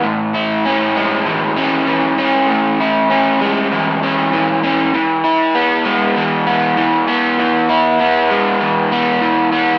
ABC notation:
X:1
M:4/4
L:1/8
Q:1/4=98
K:E
V:1 name="Overdriven electric guitar"
A,, E C G, E, C E, C | A,, E C G, E, C E, C | E, E B, G, E, B, E, B, | E, E B, G, E, B, E, B, |]